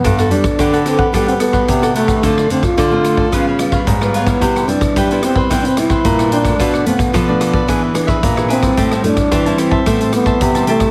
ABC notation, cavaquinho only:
X:1
M:4/4
L:1/16
Q:1/4=110
K:G
V:1 name="Cavaquinho"
[DGBf] [GBf] z2 [DGBf] [GBf] [DGBf] [GBf] [DGBf] [GBf] z [GBf]2 [GBf] [DGBf] [GBf] | [=FAcd] [Acd] z2 [FAcd] [Acd] [FAcd] [Acd] [^EB^c^e] [Bce] z [Bce]2 [Bce] [EBce] [Bc] | [EBcg] [Bcg] z2 [EBcg] [Bcg] [EBcg] [Bcg] [EBcg] [Bcg] z [Bcg]2 [Bcg] [EBcg] [Bcg] | [=FABd] [ABd] z2 [FABd] [ABd] [FABd] [ABd] [D^GBe] [GBe] z [GBe]2 [GBe] [DGBe] [GBe] |
[Gcea] [cea] z2 [Gcea] [cea] [Gcea] [cea] [Gcea] [cea] z [cea]2 [cea] [Gcea] [cea] |]